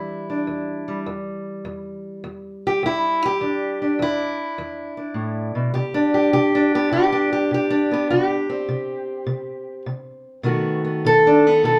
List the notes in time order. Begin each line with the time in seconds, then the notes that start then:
Already playing: E2 E3 G3 D4 E4
0.30 D4
0.47 E2
0.88 G3
1.06 E2
1.65 E2
2.24 E2
2.67 G4
2.83 E2 E4
3.26 G4
3.41 E2 D4
3.82 D4
3.99 E2 E4
4.58 E2
4.97 D4
5.14 A2
5.55 B2
5.74 C3 G4
5.94 D4
6.14 G4
6.33 C3 G4
6.55 D4
6.75 B3 G4
6.91 C3 G4
7.12 D4
7.33 G4
7.51 C3 G4
7.70 D4
7.91 B3 G4
8.10 C3 G4
8.50 C4
8.69 C3
9.27 C3
9.86 C3
10.43 B2 D#3 A3 B3 F#4
10.85 B3
11.05 B2 A4
11.27 D4
11.47 B3
11.64 B2 A4